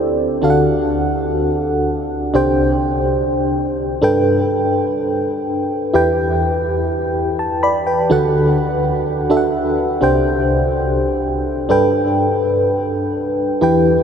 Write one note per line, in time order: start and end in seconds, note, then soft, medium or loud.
0.00 0.39 D2 medium
0.00 0.39 D3 medium
0.00 0.38 C4 medium
0.00 0.39 D4 medium
0.00 0.45 E4 medium
0.00 0.39 G4 medium
0.00 0.39 A4 medium
0.00 0.45 C5 medium
0.00 0.40 D5 medium
0.42 2.31 D2 medium
0.42 2.31 D3 medium
0.42 2.30 D4 medium
0.42 2.31 F#4 medium
0.42 2.31 A4 medium
0.42 0.49 F5 medium
0.50 2.35 F#5 medium
2.34 3.99 C2 medium
2.34 3.99 C3 medium
2.34 3.99 D4 medium
2.34 3.99 G4 medium
2.34 4.00 C5 medium
2.34 4.00 G5 medium
4.02 5.91 G2 medium
4.02 5.90 D4 medium
4.02 5.91 A4 medium
4.02 5.91 B4 medium
4.02 5.92 G5 medium
5.94 7.83 E2 medium
5.94 7.83 E3 medium
5.94 7.82 E4 medium
5.94 7.83 G4 medium
5.94 7.36 B4 medium
5.94 7.36 G5 medium
7.39 7.62 A5 medium
7.63 7.86 D5 medium
7.63 7.86 B5 medium
7.87 8.33 B4 medium
7.87 8.32 G5 medium
8.10 9.99 D2 medium
8.10 9.99 D3 medium
8.10 9.28 D4 medium
8.10 9.28 F#4 medium
8.10 9.29 A4 medium
8.10 9.29 F#5 medium
9.30 10.00 D4 medium
9.30 10.03 F#4 soft
9.30 10.03 A4 soft
9.30 9.37 E5 soft
9.37 10.06 F#5 medium
10.01 11.66 C2 medium
10.01 11.66 C3 medium
10.01 11.66 D4 medium
10.01 11.67 G4 medium
10.01 11.67 C5 medium
10.01 11.68 G5 medium
11.69 13.59 G2 medium
11.69 13.58 D4 medium
11.69 13.58 A4 medium
11.69 13.59 B4 medium
11.69 13.59 G5 medium
13.61 14.03 E2 medium
13.61 14.03 E3 medium
13.61 14.03 E4 medium
13.61 14.03 G4 medium
13.61 14.03 B4 medium
13.61 14.03 G5 medium